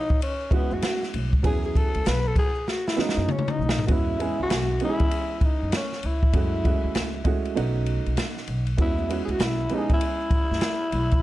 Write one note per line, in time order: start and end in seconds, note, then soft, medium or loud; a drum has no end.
0.00 0.21 D#4 medium
0.09 kick medium
0.09 maracas medium
0.21 0.55 C#4 medium
0.21 ride medium
0.21 maracas medium
0.40 maracas soft
0.50 1.32 G#3 medium
0.50 1.33 B3 medium
0.50 0.75 B3 medium
0.50 1.33 C#4 medium
0.50 1.33 E4 medium
0.50 1.34 F#4 medium
0.50 kick loud
0.50 ride soft
0.50 low conga medium
0.50 maracas soft
0.71 0.81 F#2 medium
0.71 1.03 F#4 medium
0.71 high conga medium
0.71 maracas soft
0.82 snare loud
0.82 hi-hat pedal medium
0.82 ride medium
1.02 snare soft
1.02 maracas medium
1.14 1.44 B1 medium
1.14 ride medium
1.14 high conga medium
1.14 low conga medium
1.14 maracas soft
1.32 kick medium
1.32 maracas soft
1.43 1.85 E2 loud
1.43 2.49 F#3 medium
1.43 2.50 B3 medium
1.43 2.50 C#4 medium
1.43 2.50 E4 medium
1.43 1.63 G#4 loud
1.43 2.51 G#5 medium
1.43 kick loud
1.43 ride medium
1.43 maracas medium
1.64 1.78 G#4 medium
1.64 maracas soft
1.75 2.09 A4 loud
1.75 kick medium
1.75 ride medium
1.75 maracas soft
1.94 2.04 C#2 medium
1.94 ride soft
1.94 maracas medium
2.05 2.31 B1 loud
2.05 2.29 B4 loud
2.05 snare loud
2.05 hi-hat pedal medium
2.05 ride medium
2.05 maracas medium
2.25 2.37 A4 medium
2.25 maracas soft
2.36 2.70 G#4 loud
2.36 kick medium
2.36 ride medium
2.36 low conga medium
2.36 maracas soft
2.55 maracas soft
2.67 2.89 F#4 medium
2.67 snare medium
2.67 maracas medium
2.87 3.02 E4 medium
2.87 snare medium
2.87 maracas soft
2.96 3.78 E3 medium
2.96 3.78 G#3 medium
2.96 3.78 B3 medium
2.96 3.78 C#4 medium
2.96 3.79 F#4 medium
2.96 snare medium
2.96 low conga medium
2.96 maracas soft
3.01 3.33 D#4 medium
3.09 snare medium
3.17 3.26 F#2 loud
3.17 high conga medium
3.17 maracas soft
3.29 3.53 C#4 medium
3.29 mid tom medium
3.29 maracas medium
3.39 mid tom medium
3.48 3.86 D#4 medium
3.48 mid tom medium
3.48 maracas medium
3.59 3.83 B1 medium
3.59 high conga medium
3.59 low conga medium
3.59 maracas soft
3.69 snare loud
3.79 floor tom medium
3.79 maracas medium
3.87 4.30 E2 loud
3.87 4.15 G#3 medium
3.87 4.15 B3 medium
3.87 4.16 C#4 medium
3.87 4.16 E4 medium
3.87 3.94 F#4 medium
3.87 4.16 F#4 medium
3.87 kick loud
3.87 ride medium
3.93 4.41 E4 medium
4.18 4.73 G#3 medium
4.18 4.73 B3 medium
4.18 4.74 C#4 medium
4.18 4.74 E4 medium
4.18 4.74 G#4 medium
4.18 ride medium
4.40 4.49 C#2 medium
4.40 4.80 F#4 loud
4.50 4.76 B1 medium
4.50 snare loud
4.50 hi-hat pedal soft
4.50 ride medium
4.80 5.87 E3 medium
4.80 5.87 G#3 medium
4.80 5.87 B3 medium
4.80 5.87 C#4 medium
4.80 4.90 G4 medium
4.80 ride medium
4.84 5.40 E4 loud
4.89 5.91 G#4 medium
5.00 kick medium
5.00 ride soft
5.11 ride medium
5.40 5.46 E4 medium
5.40 kick medium
5.40 ride soft
5.45 5.74 D#4 medium
5.62 5.71 F#2 medium
5.72 snare loud
5.72 hi-hat pedal medium
5.72 ride medium
5.76 6.07 C#4 medium
5.92 snare soft
6.03 6.28 C#2 medium
6.03 7.27 E4 medium
6.03 ride medium
6.23 kick medium
6.33 6.75 F#2 medium
6.33 6.60 G#3 medium
6.33 6.61 A3 medium
6.33 6.61 C#4 medium
6.33 6.61 E4 medium
6.33 6.62 F#4 medium
6.33 kick loud
6.33 ride medium
6.64 7.18 G#3 medium
6.64 7.18 A3 medium
6.64 7.19 C#4 medium
6.64 7.19 E4 medium
6.64 7.19 F#4 medium
6.64 kick medium
6.64 ride medium
6.84 6.93 D#2 medium
6.95 7.20 C#2 medium
6.95 snare loud
6.95 hi-hat pedal soft
6.95 ride medium
7.24 7.56 G#3 medium
7.24 7.53 A3 medium
7.24 7.55 C#4 medium
7.24 7.57 E4 medium
7.24 7.55 F#4 medium
7.24 kick medium
7.24 ride medium
7.45 ride soft
7.55 7.97 B1 loud
7.55 8.62 A3 medium
7.55 8.62 B3 medium
7.55 8.62 C#4 medium
7.55 8.62 D#4 medium
7.55 8.63 F#4 loud
7.55 ride medium
7.86 ride medium
8.06 8.15 B1 medium
8.06 ride soft
8.17 snare loud
8.17 hi-hat pedal medium
8.17 ride medium
8.37 snare soft
8.48 8.73 B1 medium
8.48 ride medium
8.67 ride soft
8.77 9.19 E2 loud
8.77 9.05 G#3 medium
8.77 9.05 B3 medium
8.77 9.06 C#4 medium
8.77 9.06 E4 medium
8.77 9.06 F#4 medium
8.77 kick loud
8.77 ride medium
8.77 maracas medium
8.81 9.22 E4 loud
8.98 high conga soft
8.98 maracas soft
9.08 9.63 G#3 medium
9.08 9.63 B3 medium
9.08 9.64 C#4 medium
9.08 9.64 E4 medium
9.08 9.64 F#4 medium
9.08 ride medium
9.08 maracas soft
9.25 9.37 C#2 medium
9.25 9.33 G#4 medium
9.25 ride soft
9.25 maracas soft
9.31 9.45 F#4 loud
9.39 9.64 B1 medium
9.39 snare loud
9.39 hi-hat pedal soft
9.39 ride medium
9.39 maracas medium
9.43 9.75 E4 medium
9.59 maracas soft
9.69 10.76 G#3 medium
9.69 10.76 B3 medium
9.69 10.77 C#4 medium
9.69 10.77 E4 medium
9.69 9.79 G4 medium
9.69 ride soft
9.69 low conga medium
9.69 maracas soft
9.74 9.92 D#4 medium
9.78 10.80 G#4 medium
9.89 kick medium
9.89 ride soft
9.89 maracas soft
9.93 11.22 E4 loud
10.01 ride medium
10.01 maracas medium
10.21 maracas soft
10.31 kick medium
10.31 ride medium
10.31 low conga medium
10.31 maracas soft
10.51 10.60 F#2 medium
10.51 snare soft
10.51 high conga medium
10.51 maracas soft
10.61 snare loud
10.61 hi-hat pedal medium
10.61 ride medium
10.61 maracas medium
10.83 maracas soft
10.92 11.18 B1 medium
10.92 ride medium
10.92 high conga medium
10.92 low conga medium
10.92 maracas soft
11.11 kick medium
11.11 ride soft
11.11 maracas soft